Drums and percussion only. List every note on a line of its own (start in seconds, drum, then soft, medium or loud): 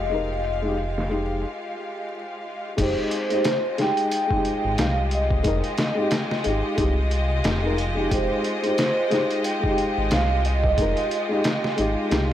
0.11 closed hi-hat medium
0.31 closed hi-hat soft
0.45 closed hi-hat medium
0.78 closed hi-hat medium
0.98 snare soft
1.11 closed hi-hat medium
2.78 kick loud
2.78 closed hi-hat medium
2.78 crash loud
3.11 closed hi-hat medium
3.30 closed hi-hat soft
3.44 snare loud
3.44 closed hi-hat medium
3.78 snare soft
3.78 closed hi-hat medium
3.97 closed hi-hat soft
4.11 closed hi-hat medium
4.31 kick medium
4.45 closed hi-hat medium
4.78 snare loud
4.78 closed hi-hat medium
5.11 closed hi-hat medium
5.30 kick medium
5.44 kick loud
5.44 closed hi-hat medium
5.64 closed hi-hat soft
5.78 snare loud
5.78 closed hi-hat medium
6.11 snare loud
6.11 closed hi-hat medium
6.31 snare soft
6.44 closed hi-hat medium
6.78 kick loud
6.78 closed hi-hat medium
7.11 closed hi-hat medium
7.44 snare loud
7.44 closed hi-hat medium
7.78 closed hi-hat medium
8.11 kick loud
8.11 closed hi-hat medium
8.44 closed hi-hat medium
8.64 closed hi-hat soft
8.78 snare loud
8.78 closed hi-hat medium
9.11 snare soft
9.11 closed hi-hat medium
9.31 closed hi-hat soft
9.44 closed hi-hat medium
9.64 kick medium
9.78 closed hi-hat medium
10.11 snare loud
10.11 closed hi-hat medium
10.45 closed hi-hat medium
10.64 kick loud
10.78 kick loud
10.78 closed hi-hat medium
10.97 closed hi-hat soft
11.11 closed hi-hat medium
11.44 snare loud
11.44 closed hi-hat medium
11.64 snare soft
11.78 closed hi-hat medium
12.11 snare loud
12.11 closed hi-hat medium